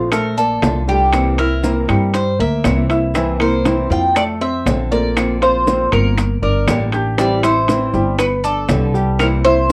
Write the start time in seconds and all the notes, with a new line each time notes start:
Already playing: A#1 A3 C4 F4 C5
0.11 A3 A4 A#4 A5, muted nylon-string guitar stroke, high bongo, high timbale, claves, maracas
0.37 A#3 A4 D5 A5, maracas
0.62 C2 D3 A3 D4 F4, high bongo, low bongo, high timbale, low timbale, maracas
0.87 G3 A3 D4 F4 G4 G5, maracas
1.12 C3 E3 A#3 C4 E4, high bongo, high timbale, claves, maracas
1.37 A#3 C4 E4 A#4 E5 E6, high bongo, high timbale
1.62 C3 E3 A#3 C4 E4 A#4 A#5, high bongo, low timbale, maracas
1.88 G2 G3 A#3 C4 E4 G4 G5, high timbale, claves, maracas
2.13 C5, muted nylon-string guitar stroke, high bongo, high timbale, maracas
2.39 D2 A#3 A#4 E5 A#5, high bongo
2.64 C2 C3 E3 A#3 C4 E4, high bongo, low bongo, high timbale, low timbale, claves, maracas
2.89 A#3 C4 E4 E5 E6, high bongo, high timbale, maracas
3.14 C3 E3 A#3 C4 E4 E5, high bongo, high timbale, maracas
3.40 A#3 C4 E4 A#4 C5 A#5, high timbale, claves
3.64 C3 E3 A#3 C4 E4, high bongo, high timbale, low timbale, maracas
3.90 F2 F3 A#3 C4 E4 F4 F5 G5, maracas
4.15 A3 A4 D5 A5, muted nylon-string guitar stroke, high bongo, high timbale, claves, maracas
4.41 C4 C5 E5 C6
4.65 A#1 D3 A3 C4 F4, high bongo, low bongo, high timbale, low timbale, maracas
4.91 A3 A#3 C4 F4 A#4 D5 A#5, maracas
5.16 D3 A#3 C4 F4, high bongo, high timbale, claves, maracas
5.41 A#3 C4 F4 C5 F5 F6, high bongo, high timbale
5.66 D3 A#3 C4 F4 C5 C6, high bongo, low timbale, maracas
5.91 G1 A#3 C4 F4 A#4 A#5, high timbale, claves, maracas
6.17 muted nylon-string guitar stroke, high bongo, high timbale, maracas
6.42 G1 D4 A#4 D5 D6, high bongo
6.67 A1 D3 G3 A#3 D4 G4, high bongo, low bongo, high timbale, low timbale, claves, maracas
6.92 A#3 D4 G4 G5 G6, high bongo, high timbale, maracas
7.18 E3 G3 C4 E4 G4 D5 G5, high bongo, high timbale, maracas
7.43 G3 C4 E4 C5 E5 E6, high timbale, claves, maracas
7.68 E3 G3 C4 E4, high bongo, high timbale, low timbale, maracas
7.93 G1 G3 C4 E4 G4 G5, maracas
8.18 B3 B4 B5, muted nylon-string guitar stroke, high bongo, high timbale, claves, maracas
8.44 D4 A4 D5 D6, maracas
8.69 C2 B2 D3 G3 B3 G4, high bongo, low bongo, high timbale, low timbale, maracas
8.94 G3 B3 G4 G5, maracas
9.19 C3 E3 A#3 C4 E4 A#4, high bongo, high timbale, claves, maracas
9.44 A#3 C4 E4 C5 E5 E6, high bongo, high timbale